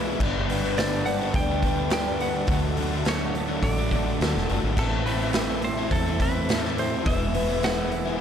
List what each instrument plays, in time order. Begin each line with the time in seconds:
Already playing: fingered electric bass B1, overdriven electric guitar E3 G#3 B3 E4, twelve-string acoustic guitar B3 E4 G#4, analog synth pad B4 E5 G#5 E6
0.07 overdriven electric guitar G#3 B3 E4
0.20 fingered electric bass G1, overdriven electric guitar G2 D3 G3 B3 D4, analog synth pad G5 A5, kick, crash
0.50 overdriven electric guitar D3 G3 B3 D4, open hi-hat
0.63 overdriven electric guitar G2 D3 G3 B3 D4
0.77 overdriven electric guitar G2 D3 G3 B3 D4, twelve-string acoustic guitar A4, clean electric guitar D5, snare, open hi-hat
0.91 overdriven electric guitar G3 B3 D4
1.05 overdriven electric guitar D3 G3 B3 D4, twelve-string acoustic guitar D4, clean electric guitar F#5, muted overdriven electric guitar stroke, open hi-hat
1.19 overdriven electric guitar G3 B3 D4
1.34 fingered electric bass D2, twelve-string acoustic guitar A4, clean electric guitar G5, kick, open hi-hat
1.48 overdriven electric guitar G3 B3 D4
1.62 overdriven electric guitar D3 G3 B3 D4, kick, open hi-hat
1.79 overdriven electric guitar G3 B3 D4
1.90 overdriven electric guitar G2 D3 G3 B3 D4, clean electric guitar G5, snare, open hi-hat
2.05 overdriven electric guitar G3 B3 D4
2.19 overdriven electric guitar D3 G3 B3 D4, clean electric guitar F#5, open hi-hat
2.32 overdriven electric guitar G3 B3 D4
2.47 fingered electric bass D2, overdriven electric guitar D3 F#3 A3 D4, analog synth pad A4 F#5, kick, open hi-hat
2.75 overdriven electric guitar D3 F#3 A3, open hi-hat
2.80 overdriven electric guitar D4
2.91 overdriven electric guitar D3 F#3 A3 D4
3.05 overdriven electric guitar D3 F#3 A3 D4, twelve-string acoustic guitar A4, clean electric guitar C#5, snare, open hi-hat
3.18 overdriven electric guitar F#3 A3 D4
3.34 overdriven electric guitar D3 F#3 A3 D4, muted overdriven electric guitar stroke, open hi-hat
3.47 overdriven electric guitar F#3 A3 D4
3.62 fingered electric bass A1, twelve-string acoustic guitar A4, clean electric guitar D5, kick, open hi-hat
3.77 overdriven electric guitar F#3 A3 D4
3.91 overdriven electric guitar D3 F#3 A3 D4, kick, open hi-hat
4.06 overdriven electric guitar F#3 A3 D4
4.19 fingered electric bass D2, overdriven electric guitar D3 F#3 A3 D4, snare, open hi-hat
4.33 fingered electric bass E1, overdriven electric guitar F#3 A3 D4
4.37 snare
4.48 fingered electric bass F#1, overdriven electric guitar D3 F#3 A3 D4, open hi-hat
4.63 fingered electric bass G#1, overdriven electric guitar F#3 A3 D4
4.76 fingered electric bass A1, overdriven electric guitar A2 E3 A3 C4, analog synth pad C4 E5 E6, clean electric guitar A4, kick, crash
4.81 overdriven electric guitar E4
5.05 overdriven electric guitar E3 A3 C4 E4, clean electric guitar B4, open hi-hat
5.20 overdriven electric guitar A2 E3 A3 C4 E4
5.33 overdriven electric guitar A2 E3 A3, twelve-string acoustic guitar A4, snare, open hi-hat
5.37 overdriven electric guitar C4 E4
5.49 overdriven electric guitar A3 C4 E4
5.62 overdriven electric guitar E3 A3 C4 E4, twelve-string acoustic guitar E4, clean electric guitar C5, muted overdriven electric guitar stroke, open hi-hat
5.77 overdriven electric guitar A3 C4 E4
5.91 fingered electric bass E2, clean electric guitar A4, twelve-string acoustic guitar A4, kick, open hi-hat
6.05 overdriven electric guitar A3 C4 E4
6.20 overdriven electric guitar E3 A3 C4 E4, clean electric guitar B4, kick, open hi-hat
6.35 overdriven electric guitar A3 C4 E4
6.48 overdriven electric guitar A2 E3 A3 C4 E4, snare, open hi-hat
6.63 overdriven electric guitar A3 C4 E4, clean electric guitar A4, snare
6.77 overdriven electric guitar E3 A3 C4 E4, clean electric guitar C5, open hi-hat
6.91 overdriven electric guitar A3 C4 E4
7.04 fingered electric bass E1, overdriven electric guitar E3 G#3 B3 E4, clean electric guitar E5, kick, open hi-hat
7.09 analog synth pad B4 G#5 E6
7.34 overdriven electric guitar E3 G#3 B3 E4, open hi-hat
7.47 overdriven electric guitar E3 G#3 B3 E4
7.63 overdriven electric guitar E3 G#3 B3, twelve-string acoustic guitar G#4, clean electric guitar F#5, snare, open hi-hat
7.67 overdriven electric guitar E4
7.77 overdriven electric guitar G#3 B3 E4
7.92 overdriven electric guitar E3 G#3, twelve-string acoustic guitar E4, muted overdriven electric guitar stroke, open hi-hat
7.96 overdriven electric guitar B3 E4
8.05 overdriven electric guitar G#3 B3 E4